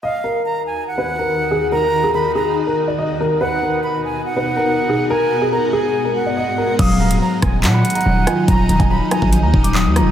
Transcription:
<<
  \new Staff \with { instrumentName = "Flute" } { \time 4/4 \key ees \minor \tempo 4 = 142 f''4 bes''8 aes''8 ges''2 | bes''4 ces'''8 bes''8 r2 | fis''4 b''8 aes''8 fis''2 | aes''4 bes''8 aes''4 ges''4. |
f''4 bes''8 aes''8 ges''2 | bes''4 ces'''8 bes''8 r2 | }
  \new Staff \with { instrumentName = "Grand piano" } { \time 4/4 \key ees \minor ees''8 bes'4.~ bes'16 ces''8 bes'8. aes'8 | bes'8. aes'16 bes'8 aes'8. bes'8 d''16 ees''8 bes'8 | b'8 bes'4.~ bes'16 b'8 bes'8. aes'8 | bes'8. aes'16 bes'8 aes'8. bes'8 d''16 ees''8 bes'8 |
ees'''8 bes''4.~ bes''16 ces'''8 bes''8. aes''8 | bes''8. aes''16 bes''8 aes''8. bes''8 d'''16 ees'''8 bes''8 | }
  \new Staff \with { instrumentName = "Ambient pad" } { \time 4/4 \key ees \minor << { ges'1~ | ges'1 | fis'1~ | fis'1 |
ees''1~ | ees''1 | } \\ { <ees, ees ees'>1~ | <ees, ees ees'>1 | <b, b dis'>1 | <aes, aes>1 |
<ees ges ees'>1~ | <ees ges ees'>1 | } >> }
  \new Staff \with { instrumentName = "Synth keys" } { \clef bass \time 4/4 \key ees \minor r1 | r1 | r1 | r1 |
ges4 ges4 ges4 ges8 f'8 | ges4 ges4 ges4 ges8 f'8 | }
  \new Staff \with { instrumentName = "808-style bass" } { \clef bass \time 4/4 \key ees \minor r1 | r1 | r1 | r1 |
ees,,4 r8 ees,,8 bes,8 r8 ees,,8 r8 | ees,,8 ees,,16 ees,,8 r8 bes,,8 ees,16 ees,,8. ees,16. ees,,16. | }
  \new DrumStaff \with { instrumentName = "Drums" } \drummode { \time 4/4 r4 r4 r4 r4 | r4 r4 r4 r4 | r4 r4 r4 r4 | r4 r4 r4 r4 |
<cymc hh bd>8. hh16 r8 <hh bd ss>8 <hc hh>8 hh32 hh32 hh32 hh32 r8 <hh ss>8 | <hh bd>8 hh16 <hh bd>16 r8 <hh ss>16 bd16 hh8 bd16 hh16 hc8 <hh ss>8 | }
>>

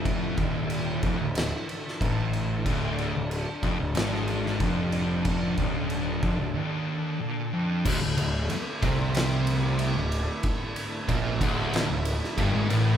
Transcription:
<<
  \new Staff \with { instrumentName = "String machine" } { \time 4/4 \key d \minor \tempo 4 = 93 << { e'1 | d'1~ | d'1 | e'1~ |
e'1 | } \\ { <d a'>1~ | <d a'>1~ | <d a'>1 | <d a>1~ |
<d a>1 | } >> }
  \new Staff \with { instrumentName = "Distorted electric guitar" } { \clef bass \time 4/4 \key d \minor f,8 ees,4 f,16 d,8 r8. a,4 | d,8. d,8 r16 f,16 d,16 gis,4 f,4~ | f,8 ees,4 f,16 d,16 ees,4 bes,8 f,8 | d,16 d,16 d,8 r8 c4.~ c16 d,8 r16 |
r4 bes,8 d,8. d,8 r16 g,16 gis,16 a,8 | }
  \new Staff \with { instrumentName = "Distorted electric guitar" } { \clef bass \time 4/4 \key d \minor f,8 ees,4 f,16 d,8 r8. a,4 | d,8. d,8 r16 f,16 d,16 gis,4 f,4~ | f,8 ees,4 f,16 d,16 ees,4 bes,8 f,8 | d,16 d,16 d,8 r8 c4.~ c16 d,8 r16 |
r4 bes,8 d,8. d,8 r16 g,16 gis,16 a,8 | }
  \new Staff \with { instrumentName = "Distorted electric guitar" } { \clef bass \time 4/4 \key d \minor r1 | r1 | r1 | d,16 d,16 d,8 r8 c4.~ c16 d,8 r16 |
r4 bes,8 d,8. d,8 r16 g,16 gis,16 a,8 | }
  \new Staff \with { instrumentName = "Picked electric bass" } { \clef bass \time 4/4 \key d \minor f,,8 ees,,4 f,,16 d,,8 r8. a,,4 | d,,8. d,,8 r16 f,,16 d,,16 gis,,4 f,,4~ | f,,8 ees,,4 f,,16 d,,16 r2 | d,,16 d,,16 d,,8 r8 c,4.~ c,16 d,,8 r16 |
r4 bes,,8 d,,8. d,,8 r16 g,,16 gis,,16 a,,8 | }
  \new DrumStaff \with { instrumentName = "Drums" } \drummode { \time 4/4 <cymc bd>8 <cymc bd>8 cymc8 <cymc bd>8 <cymc sn>8 cymc16 sn16 <cymc bd>8 cymc8 | <cymc bd>8 cymc8 cymc8 <cymc bd>8 <cymc sn>8 cymc16 sn16 <cymc bd>8 cymc8 | <cymc bd>8 <cymc bd>8 cymc8 <cymc bd>8 r4 r4 | <cymc bd>8 cymr8 cymr8 <bd cymr>8 <cymr sn>8 cymr8 cymr8 cymr8 |
<bd cymr>8 cymr8 <bd cymr>8 <bd cymr>8 <cymr sn>8 cymr16 sn16 <bd cymr>8 cymr8 | }
>>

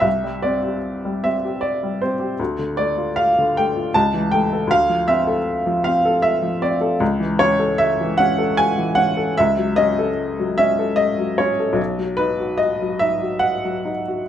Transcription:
\new Staff \with { instrumentName = "Upright piano" } { \time 3/4 \key d \dorian \tempo 4 = 77 << { e''8 d''4 e''8 d''8 c''8 | r8 d''8 f''8 g''8 a''8 g''8 | f''8 e''4 f''8 e''8 d''8 | \key b \mixolydian r8 cis''8 e''8 fis''8 gis''8 fis''8 |
e''8 dis''4 e''8 dis''8 cis''8 | r8 b'8 dis''8 e''8 fis''4 | } \\ { c,16 g16 c'16 g'8 g16 c'16 g'8 g16 c'16 g'16 | d,16 d16 a16 f'8 d16 a16 f'16 cis,16 e16 a16 a'16 | d,16 f16 c'16 a'8 f16 c'16 a'8 f16 c'16 a'16 | cis,16 e16 cis'16 a'8 e16 cis'16 a'8 e16 cis'16 a'16 |
cis,16 fis16 cis'16 a'8 fis16 cis'16 a'8 fis16 cis'16 a'16 | b,,16 fis16 dis'16 fis'8 fis16 dis'16 fis'8 fis16 dis'16 fis'16 | } >> }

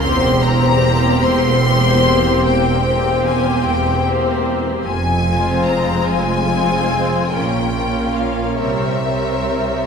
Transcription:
<<
  \new Staff \with { instrumentName = "Violin section" } { \time 12/8 \key c \phrygian \tempo 4. = 49 c'''8 bes''4 c'''4. g''4 aes''8 g''8 r4 | aes''4 bes''8 aes''4. g''4 f''8 e''4. | }
  \new Staff \with { instrumentName = "Violin section" } { \time 12/8 \key c \phrygian <g' c''>8 <g' c''>4. <g' c''>4. <g' c''>4. <g' c''>4 | r8 <f' c''>4. <f' c''>4 <f' bes'>8 <f' bes'>4 <bes' des''>8 <bes' des''>4 | }
  \new Staff \with { instrumentName = "Viola section" } { \time 12/8 \key c \phrygian <bes c'>8 <bes c'>4. <bes c'>4. <bes c'>4. <bes c'>4 | r8 <aes c'>4. <aes c'>4 <bes des'>8 <bes des'>4 <g c'>8 <g c'>4 | }
  \new Staff \with { instrumentName = "Cello section" } { \clef bass \time 12/8 \key c \phrygian e,4. e,4. e,4. e,4. | f,4. f,4. bes,4. c4. | }
  \new Staff \with { instrumentName = "Double bass section" } { \clef bass \time 12/8 \key c \phrygian e,,4. e,,4. e,,4. e,,4. | f,,4. f,,4. bes,,4. c,4. | }
>>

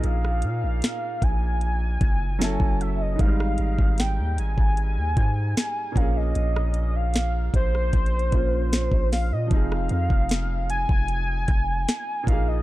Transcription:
<<
  \new Staff \with { instrumentName = "Soft synth lead" } { \time 4/4 \key f \minor \tempo 4 = 76 f''4. aes''2 fes''16 ees''16 | f''4 g''8 aes''2 f''16 ees''16~ | ees''8. f''8. c''2 f''16 ees''16 | f''4. aes''2 f''16 ees''16 | }
  \new Staff \with { instrumentName = "Grand piano" } { \time 4/4 \key f \minor <bes, bes ees' aes'>2. <ges des' fes' a'>4 | <aes, g aes ees'>2.~ <aes, g aes ees'>8 <bes, bes des' aes'>8~ | <bes, bes des' aes'>2~ <bes, bes des' aes'>8 <bes, bes des' f'>4. | <f c' ees' aes'>2.~ <f c' ees' aes'>8 <bes, bes ees' aes'>8 | }
  \new Staff \with { instrumentName = "808-style bass" } { \clef bass \time 4/4 \key f \minor bes,,8 bes,16 bes,,16 r8 bes,,4 ges,,8. ges,,8. | aes,,8 aes,,16 aes,,8 ees,16 aes,,16 aes,,8 ees,16 aes,8 r8 bes,,8 | bes,,4. bes,,8 bes,,8 bes,,8. bes,,8 bes,16 | f,,8 f,16 f,,4 f,,8. f,,8 r8 bes,,8 | }
  \new DrumStaff \with { instrumentName = "Drums" } \drummode { \time 4/4 hh16 ss16 hh8 <hh sn>8 <hh bd>8 hh8 <hh bd>8 <hh sn>16 bd16 hh8 | <hh bd>16 ss16 hh16 bd16 <hh sn>8 hh16 bd16 hh8 <hh bd>8 <hh sn>8 <hh bd>8 | hh16 ss16 hh8 <hh sn>8 <hh bd>16 ss16 \tuplet 3/2 { <hh bd>16 hh16 hh16 <hh bd>16 r16 r16 } <hh sn>16 bd16 <hho sn>8 | <hh bd>16 ss16 hh16 bd16 <hh sn>8 hh16 bd16 hh8 <hh bd>8 <hh sn>8 <hh bd>8 | }
>>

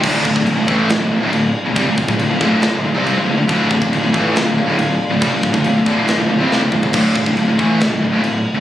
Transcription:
<<
  \new Staff \with { instrumentName = "String section" } { \time 4/4 \key d \minor \tempo 4 = 139 <a d' f' d'' f''>1~ | <a d' f' d'' f''>1~ | <a d' f' d'' f''>1~ | <a d' f' d'' f''>1~ |
<a d' f' d'' f''>1 | }
  \new Staff \with { instrumentName = "Distorted electric guitar" } { \clef bass \time 4/4 \key d \minor <d, a, d>8 <d, a,>16 <d, a,>16 <d, a,>16 <d, a,>16 <a, e a>8 <d, a,>16 <d, a,>16 <d, a,>16 <d, a,>16 <d, a,>8 r16 <d, a,>16 | <c g>16 <d, a,>8 <d, a,>16 <d, a,>16 <d, a,>16 <d, a, d>8 r16 <d, a,>16 <d, a,>16 <c g c'>8 <d, a,>16 <d, a,>16 <d, a,>16 | <d, a, d>8 <d, a,>16 <d, a,>16 <d, a,>16 <d, a,>16 <a, e a>8 <d, a,>16 <d, a,>16 <d, a,>16 <d, a,>16 <d, a,>8 r16 <d, a,>16 | <c g>16 <d, a,>8 <d, a,>16 <d, a,>16 <d, a,>16 <d, a, d>8 r16 <d, a,>16 <d, a,>16 <c g c'>8 <d, a,>16 <d, a,>16 <d, a,>16 |
<d, a, d>8 <d, a,>16 <d, a,>16 <d, a,>16 <d, a,>16 <a, e a>8 <d, a,>16 <d, a,>16 <d, a,>16 <d, a,>16 <d, a,>8 r16 <d, a,>16 | }
  \new Staff \with { instrumentName = "Distorted electric guitar" } { \clef bass \time 4/4 \key d \minor <d, a, d>8 <d, a,>16 <d, a,>16 <d, a,>16 <d, a,>16 <a, e a>8 <d, a,>16 <d, a,>16 <d, a,>16 <d, a,>16 <d, a,>8 r16 <d, a,>16 | <c g>16 <d, a,>8 <d, a,>16 <d, a,>16 <d, a,>16 <d, a, d>8 r16 <d, a,>16 <d, a,>16 <c g c'>8 <d, a,>16 <d, a,>16 <d, a,>16 | <d, a, d>8 <d, a,>16 <d, a,>16 <d, a,>16 <d, a,>16 <a, e a>8 <d, a,>16 <d, a,>16 <d, a,>16 <d, a,>16 <d, a,>8 r16 <d, a,>16 | <c g>16 <d, a,>8 <d, a,>16 <d, a,>16 <d, a,>16 <d, a, d>8 r16 <d, a,>16 <d, a,>16 <c g c'>8 <d, a,>16 <d, a,>16 <d, a,>16 |
<d, a, d>8 <d, a,>16 <d, a,>16 <d, a,>16 <d, a,>16 <a, e a>8 <d, a,>16 <d, a,>16 <d, a,>16 <d, a,>16 <d, a,>8 r16 <d, a,>16 | }
  \new Staff \with { instrumentName = "Distorted electric guitar" } { \clef bass \time 4/4 \key d \minor <d, a, d>8 <d, a,>16 <d, a,>16 <d, a,>16 <d, a,>16 <a, e a>8 <d, a,>16 <d, a,>16 <d, a,>16 <d, a,>16 <d, a,>8 r16 <d, a,>16 | <c g>16 <d, a,>8 <d, a,>16 <d, a,>16 <d, a,>16 <d, a, d>8 r16 <d, a,>16 <d, a,>16 <c g c'>8 <d, a,>16 <d, a,>16 <d, a,>16 | <d, a, d>8 <d, a,>16 <d, a,>16 <d, a,>16 <d, a,>16 <a, e a>8 <d, a,>16 <d, a,>16 <d, a,>16 <d, a,>16 <d, a,>8 r16 <d, a,>16 | <c g>16 <d, a,>8 <d, a,>16 <d, a,>16 <d, a,>16 <d, a, d>8 r16 <d, a,>16 <d, a,>16 <c g c'>8 <d, a,>16 <d, a,>16 <d, a,>16 |
<d, a, d>8 <d, a,>16 <d, a,>16 <d, a,>16 <d, a,>16 <a, e a>8 <d, a,>16 <d, a,>16 <d, a,>16 <d, a,>16 <d, a,>8 r16 <d, a,>16 | }
  \new Staff \with { instrumentName = "Picked electric bass" } { \clef bass \time 4/4 \key d \minor d,,8 d,,16 d,,16 d,,16 d,,16 a,,8 d,,16 d,,16 d,,16 d,,16 d,,8 r16 d,,16 | c,16 d,,8 d,,16 d,,16 d,,16 d,,8 r16 d,,16 d,,16 c,8 d,,16 d,,16 d,,16 | d,,8 d,,16 d,,16 d,,16 d,,16 a,,8 d,,16 d,,16 d,,16 d,,16 d,,8 r16 d,,16 | c,16 d,,8 d,,16 d,,16 d,,16 d,,8 r16 d,,16 d,,16 c,8 d,,16 d,,16 d,,16 |
d,,8 d,,16 d,,16 d,,16 d,,16 a,,8 d,,16 d,,16 d,,16 d,,16 d,,8 r16 d,,16 | }
  \new DrumStaff \with { instrumentName = "Drums" } \drummode { \time 4/4 <cymc bd>8 bd16 bd16 cymc8 bd8 <cymc sn>4 cymc4 | <cymc bd>8 bd16 bd16 cymc8 bd8 <cymc sn>4 cymc4 | <cymc bd>8 bd16 bd16 cymc8 bd8 <cymc sn>4 cymc4 | <cymc bd>8 bd16 bd16 cymc8 bd8 <cymc sn>4 sn16 tommh16 toml16 tomfh16 |
<cymc bd>8 bd16 bd16 cymc8 bd8 <cymc sn>4 cymc4 | }
>>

